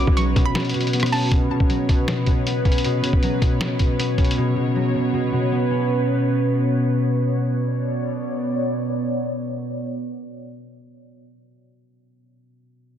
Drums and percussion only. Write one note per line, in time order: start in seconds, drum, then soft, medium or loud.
0.07 kick medium
0.17 closed hi-hat medium
0.36 kick loud
0.36 closed hi-hat medium
0.55 snare loud
0.55 closed hi-hat soft
0.60 closed hi-hat medium
0.65 closed hi-hat medium
0.69 closed hi-hat medium
0.74 closed hi-hat medium
0.81 closed hi-hat medium
0.87 closed hi-hat medium
0.93 closed hi-hat medium
1.00 cross-stick loud
1.00 closed hi-hat medium
1.06 closed hi-hat medium
1.13 open hi-hat medium
1.32 kick loud
1.32 closed hi-hat medium
1.60 kick medium
1.70 closed hi-hat medium
1.89 kick loud
1.89 closed hi-hat medium
2.08 snare loud
2.08 closed hi-hat medium
2.27 kick medium
2.27 closed hi-hat medium
2.47 closed hi-hat medium
2.65 kick medium
2.65 closed hi-hat soft
2.72 closed hi-hat medium
2.78 closed hi-hat medium
2.84 closed hi-hat medium
3.04 closed hi-hat medium
3.13 kick medium
3.23 closed hi-hat medium
3.42 kick medium
3.42 closed hi-hat medium
3.61 snare loud
3.61 closed hi-hat medium
3.79 kick medium
3.79 closed hi-hat medium
4.00 closed hi-hat medium
4.18 kick medium
4.18 closed hi-hat soft
4.25 closed hi-hat medium
4.31 closed hi-hat medium